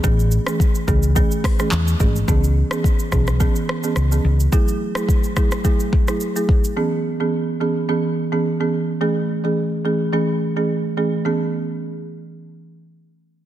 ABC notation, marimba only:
X:1
M:4/4
L:1/16
Q:"Swing 16ths" 1/4=107
K:C#m
V:1 name="Marimba"
[E,A,CG] z2 [E,A,CG]3 [E,A,CG]2 [E,A,CG] z2 [E,A,CG]3 [E,A,CG]2 | [E,B,CG] z2 [E,B,CG] z2 [E,B,CG] z [E,B,CG] z2 [E,B,CG] z [E,B,CG] z2 | [F,A,EG] z2 [F,A,EG] z2 [F,A,EG] z [F,A,EG] z2 [F,A,EG] z [F,A,EG] z2 | [E,B,CG] z2 [E,B,CG] z2 [E,B,CG] z [E,B,CG] z2 [E,B,CG] z [E,B,CG] z2 |
[E,A,CG] z2 [E,A,CG] z2 [E,A,CG] z [E,A,CG] z2 [E,A,CG] z2 [E,A,CG] z | [E,B,CG]16 |]